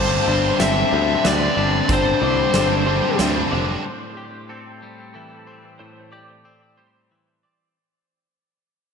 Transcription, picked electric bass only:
Already playing: G1
0.28 G1
0.60 G1
0.93 D2
1.25 D2
1.57 G1
1.89 G1
2.22 C2
2.54 G1
3.20 D2
3.53 F1

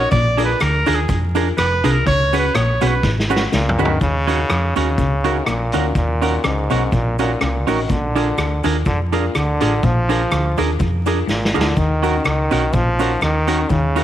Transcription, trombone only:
3.54 A#2
3.80 D#3
4.02 C#3
4.77 C#3
5.48 A#2
5.96 A#2
6.45 G#2
6.93 A#2
7.20 A#2
7.42 A#2
7.68 D#3
7.84 D#3
7.90 D3
8.87 D3
9.13 A#2
9.36 D3
9.85 F3
11.30 A#2
11.56 D3
11.78 D#3
12.26 D#3
12.75 F3
13.23 D#3
13.71 C#3

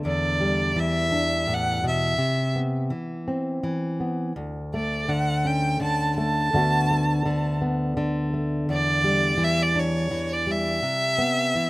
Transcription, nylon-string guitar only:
Already playing: D3 B3
0.05 E2
0.41 G3
0.76 E3
1.12 D4
1.47 A2
1.84 B2
2.18 C3
2.56 B3
2.90 E3
3.28 C4
3.63 E3
4.00 B3
4.36 D2
4.74 A3
5.09 D3
5.45 C#4
5.81 D3
6.18 A3
6.53 D2 D3 A3 B3 F#4
6.91 A3
7.26 D3
7.62 B3
7.97 D3
8.34 A3
8.69 E2
9.04 G3
9.38 E3
9.76 D4
10.11 E3
10.47 G3
10.82 C3
11.18 B3
11.55 E3

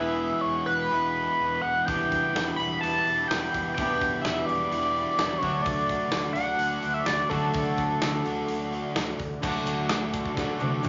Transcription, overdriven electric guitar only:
Already playing: E2 B2 E3 G#3
0.00 B3 E4
0.91 E2 B2 E3 G#3 B3 E4
1.87 E2 B2 E3 G3 B3 E4
2.83 E2 B2 E3 G3 B3 E4
3.76 E2 B2 E3 G3 B3 E4
4.71 E2 B2 E3 G3 B3 E4
5.41 D3 A3 D4 F#4
6.36 D3 A3 D4 F#4
7.29 D3 A3 D4 F#4
8.24 D3 A3 D4 F#4
9.42 D3 D4 F#4 A4
10.36 D3 D4 F#4 A4

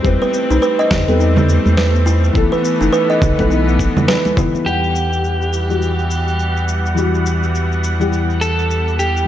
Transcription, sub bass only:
0.05 E2
0.50 B1
0.91 E2
1.08 E2
1.66 E2
2.35 B1
2.81 F#1
3.22 B1
3.39 B1
4.37 F#1
4.66 E2

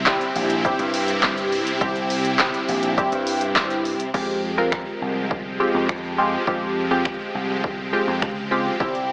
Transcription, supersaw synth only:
Already playing: C3 C4 E4 G4
4.14 F3 G#3 C4 G4
8.80 C3 E4

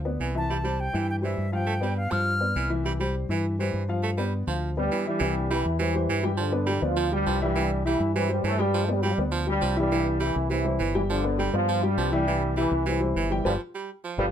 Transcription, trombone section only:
4.77 G2 G3
5.07 G2 G3
5.51 E3 E4
5.80 E3 E4
6.25 E3 E4
6.39 D3 D4
6.83 F3 F4
7.12 G2 G3
7.42 G2 G3
7.86 E3 E4
8.15 E3 E4
8.31 G2 G3
8.45 A2 A3
8.60 G2 G3
8.85 A3
8.93 G3
9.03 F3
9.12 G3
9.49 G2 G3
9.78 G2 G3
10.22 E3 E4
10.51 E3 E4
10.96 E3 E4
11.11 D3 D4
11.54 F3 F4
11.83 G2 G3
12.13 G2 G3
12.57 E3 E4
12.88 E3 E4
13.31 E3 E4
13.46 D3 F3 G3
14.19 D3 F3 G3

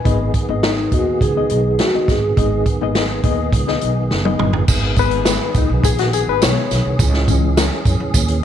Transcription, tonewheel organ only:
0.05 D#3 B3 G#4
4.69 D#3 B3 G#4
7.00 E3 C#4

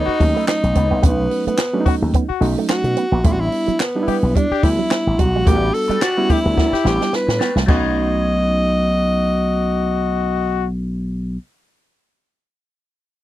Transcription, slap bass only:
0.08 muted slap bass stroke
0.20 D#2
0.63 B1
0.76 C#2
0.91 C2
1.04 B1
1.47 muted slap bass stroke
1.86 muted slap bass stroke
2.02 D#2
2.30 muted slap bass stroke
2.41 B1
2.84 B2
3.12 A#1
3.25 A1
3.68 muted slap bass stroke
4.08 muted slap bass stroke
4.23 B1
4.51 muted slap bass stroke
4.63 D2
5.07 A1
5.19 B1
5.34 A#1
5.47 A1
5.89 muted slap bass stroke
6.30 muted slap bass stroke
6.45 D2
6.73 muted slap bass stroke
6.85 A1
7.28 A2
7.55 C2
7.69 B1

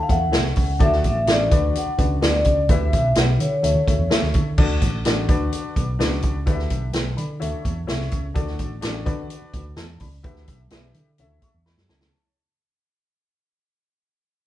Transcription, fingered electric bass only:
0.09 E2
0.33 C2
0.57 C#2
0.80 D2
1.04 A1
1.27 A1
1.51 D2
1.86 muted fingered electric bass stroke
1.99 C#2
2.22 D2
2.45 C#2
2.69 D2
2.93 B1
3.16 B1
3.40 D3
3.63 D2
3.75 D3
3.88 D2
3.99 E2
4.11 muted fingered electric bass stroke
4.22 D2
4.35 D3
4.58 D2
4.82 A1
5.05 A1
5.29 D2
5.64 muted fingered electric bass stroke
5.76 B1
5.99 C#2
6.23 C#2
6.47 D2
6.70 B1
6.94 B1
7.18 D3
7.41 D2
7.53 muted fingered electric bass stroke
7.65 E2
7.89 C2
8.12 C#2
8.35 D2
8.59 A1
8.83 A1
9.06 D3
9.42 muted fingered electric bass stroke
9.53 D2
9.77 E2
10.01 C#2
10.24 D2
10.48 B1
10.71 B1
10.95 D3
11.19 D2
11.42 muted fingered electric bass stroke
11.54 E2
11.78 F#2
11.89 C#2

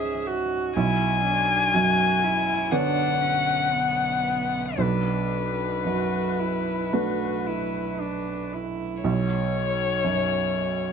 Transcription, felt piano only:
Already playing: C#2 G#3 C#4 C#5
0.77 B1
1.75 F#2
2.72 D3 B3 C#5
4.78 B1
5.85 F#2
6.93 A3 D4 B4
9.04 B1
10.04 F#2

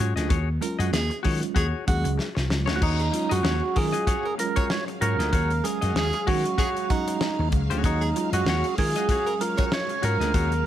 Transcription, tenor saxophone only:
0.62 A#4
0.79 F#4
0.93 G#4
1.57 G#4
1.88 F#4
2.99 G#4
3.32 F#4
3.63 G#4
3.76 A#4
4.08 G#4
4.25 A#4
4.56 C#5
5.64 A#4
5.82 F#4
5.96 G#4
6.59 G#4
6.90 F#4
8.01 G#4
8.33 F#4
8.64 G#4
8.78 A#4
9.09 G#4
9.26 A#4
9.58 C#5

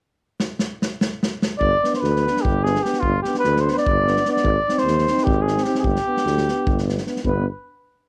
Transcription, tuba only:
1.59 G1
2.02 D2
2.45 G1
3.04 G1
3.45 D2
3.87 G1
4.43 G#1
4.84 D#2
5.26 G#1
5.83 G1
6.25 D2
6.66 G1
7.24 G1

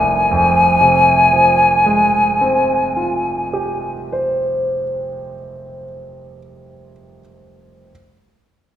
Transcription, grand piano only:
Already playing: F1 C2
0.31 F2
0.81 C3
1.33 F3
1.86 G#3
2.41 C4
2.97 F4
3.53 G4
4.12 C5

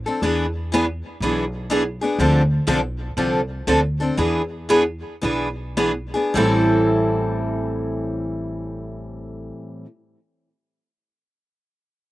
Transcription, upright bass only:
0.22 E2
1.20 B1
2.19 D2
2.68 B1
3.17 C2
3.67 D2
4.18 E2
5.23 B1
6.34 A1

